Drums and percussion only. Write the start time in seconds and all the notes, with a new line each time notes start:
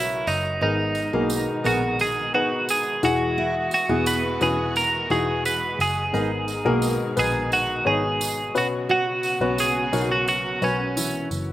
0.27 tambourine
0.95 tambourine
1.30 tambourine
1.65 tambourine
1.99 tambourine
2.69 tambourine
3.03 tambourine
3.71 tambourine
4.06 tambourine
4.41 tambourine
4.76 tambourine
5.10 tambourine
5.45 tambourine
5.80 tambourine
6.15 tambourine
6.48 tambourine
6.82 tambourine
7.17 tambourine
7.52 tambourine
8.21 tambourine
8.55 tambourine
9.23 tambourine
9.58 tambourine
9.93 tambourine
10.28 tambourine
10.62 tambourine
10.97 tambourine
11.31 tambourine